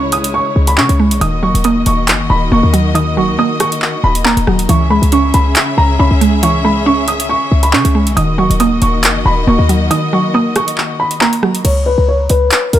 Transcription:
Already playing: 808-style bass C#2, string section C#3 G#3 E4 C#5, synth pluck E3 G#3 C#4
0.12 upright piano D#6, closed hi-hat
0.24 closed hi-hat
0.34 upright piano C#6
0.56 808-style bass C#2
0.67 upright piano B5, closed hi-hat
0.78 808-style bass C#3, synth pluck C#4, upright piano C#6, clap
0.89 808-style bass C#2, closed hi-hat
1.00 synth pluck G#3
1.11 808-style bass B1, closed hi-hat
1.21 808-style bass D#1, string section D#3 A#3 F#4 D#5, synth pluck D#3, upright piano D#6, closed hi-hat
1.43 synth pluck F#3, upright piano C#6
1.54 808-style bass D#1, closed hi-hat
1.64 synth pluck A#3, upright piano D#6, closed hi-hat
1.86 808-style bass D#1, upright piano C#6, closed hi-hat
2.08 808-style bass F#1, clap, closed hi-hat
2.30 808-style bass D#1, upright piano B5
2.52 808-style bass D#1, synth pluck A#3, upright piano C#6
2.63 808-style bass D#2
2.73 synth pluck F#3, closed hi-hat
2.95 synth pluck D#3, upright piano D#6, closed hi-hat
3.17 808-style bass E1, synth pluck F#3, upright piano C#6
3.28 808-style bass D#2
3.39 synth pluck A#3, upright piano D#6
3.60 upright piano C#6, cross-stick, closed hi-hat
3.72 closed hi-hat
3.82 clap
4.04 808-style bass D#1, upright piano B5
4.15 closed hi-hat
4.25 synth pluck A#3, upright piano A#5, clap
4.37 808-style bass D#1, closed hi-hat
4.47 808-style bass D#1, synth pluck F#3, cross-stick
4.59 closed hi-hat
4.69 808-style bass C#2, string section C#3 C#4 G#4 E5, synth pluck E3, upright piano C#6, closed hi-hat
4.90 synth pluck G#3, upright piano B5
5.02 808-style bass C#2, closed hi-hat
5.12 synth pluck C#4, upright piano C#6, closed hi-hat
5.34 808-style bass C#2, upright piano B5, closed hi-hat
5.56 clap, closed hi-hat
5.78 808-style bass C#2, upright piano A#5
5.99 808-style bass C#2, synth pluck C#4, upright piano B5
6.11 808-style bass C#2
6.21 synth pluck G#3, closed hi-hat
6.43 synth pluck E3, upright piano C#6, closed hi-hat
6.65 synth pluck G#3, upright piano B5
6.86 synth pluck C#4, upright piano C#6
7.08 upright piano D#6, closed hi-hat
7.20 closed hi-hat
7.29 upright piano C#6
7.52 808-style bass C#2
7.63 upright piano B5, closed hi-hat
7.73 808-style bass C#3, synth pluck C#4, upright piano C#6, clap
7.85 808-style bass C#2, closed hi-hat
7.95 synth pluck G#3
8.07 808-style bass B1, closed hi-hat
8.17 808-style bass D#1, synth pluck D#3, string section D#3 A#3 F#4 D#5, upright piano D#6, closed hi-hat
8.38 synth pluck F#3, upright piano C#6
8.50 808-style bass D#1, closed hi-hat
8.60 synth pluck A#3, upright piano D#6, closed hi-hat
8.82 808-style bass D#1, upright piano C#6, closed hi-hat
9.04 808-style bass F#1, clap, closed hi-hat
9.26 808-style bass D#1, upright piano B5
9.47 808-style bass D#1, synth pluck A#3, upright piano C#6
9.59 808-style bass D#2
9.69 synth pluck F#3, closed hi-hat
9.90 synth pluck D#3, upright piano D#6, closed hi-hat
10.13 synth pluck F#3, upright piano C#6
10.34 synth pluck A#3, upright piano D#6
10.56 upright piano C#6, cross-stick, closed hi-hat
10.68 closed hi-hat
10.78 clap
11.00 upright piano B5
11.11 closed hi-hat
11.21 synth pluck A#3, upright piano A#5, clap
11.33 closed hi-hat
11.43 synth pluck F#3, cross-stick
11.55 closed hi-hat
11.65 808-style bass C#2, upright piano C#5, closed hi-hat, crash
11.86 upright piano B4
11.98 808-style bass C#2
12.08 upright piano C#5
12.29 808-style bass C#2, upright piano B4, closed hi-hat
12.51 clap, closed hi-hat
12.73 808-style bass C#2, upright piano A#4, closed hi-hat

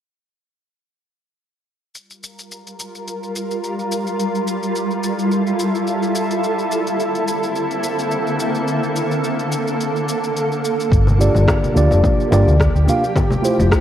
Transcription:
1.94 ambient pad G3 F4 A#4, shaker
2.10 shaker
2.23 shaker
2.39 shaker
2.52 shaker
2.67 shaker
2.80 shaker
2.95 shaker
3.08 shaker
3.23 shaker
3.36 shaker
3.51 shaker
3.64 shaker
3.79 shaker
3.92 shaker
4.07 shaker
4.19 ambient pad E4 A4, shaker
4.35 shaker
4.48 shaker
4.63 shaker
4.75 shaker
4.91 shaker
5.03 shaker
5.19 shaker
5.31 shaker
5.47 shaker
5.59 shaker
5.75 shaker
5.87 shaker
6.03 shaker
6.15 shaker
6.31 shaker
6.44 ambient pad D3 A#3 C4 E4, shaker
6.59 shaker
6.71 shaker
6.87 shaker
7.00 shaker
7.15 shaker
7.28 shaker
7.43 shaker
7.56 shaker
7.71 shaker
7.84 shaker
7.99 shaker
8.12 shaker
8.27 shaker
8.40 shaker
8.55 shaker
8.68 shaker
8.83 shaker
8.96 shaker
9.11 shaker
9.24 shaker
9.39 shaker
9.52 shaker
9.68 shaker
9.80 shaker
9.96 shaker
10.08 shaker
10.24 shaker
10.36 shaker
10.52 shaker
10.65 shaker
10.80 shaker
10.91 fingered electric bass G1, ambient pad F3 A#3 G4, kick, shaker
11.07 high conga, shaker
11.18 tine electric piano A#3 D4 F4 G4 D5, shaker
11.35 fingered electric bass G1, low conga, shaker
11.48 kick, cross-stick, low conga, shaker
11.63 high conga, shaker
11.74 fingered electric bass D2, tine electric piano A#3 D4 F4 G4 D5, shaker
11.91 fingered electric bass F1, low conga, shaker
12.03 kick, high conga, shaker
12.20 shaker
12.30 fingered electric bass G1, tine electric piano A#3 D4 F4 G4 D5, low conga, shaker
12.47 fingered electric bass D2, high conga, shaker
12.60 kick, cross-stick, shaker
12.75 fingered electric bass D2, shaker
12.86 tine electric piano A#3 D4 F4 G4 F5, high conga, shaker
13.04 shaker
13.15 ambient pad A4, kick, low conga, shaker
13.31 high conga, shaker
13.42 tine electric piano A3 E4 F4 G4 C5, shaker
13.59 fingered electric bass F1, low conga, shaker
13.72 kick, cross-stick, shaker

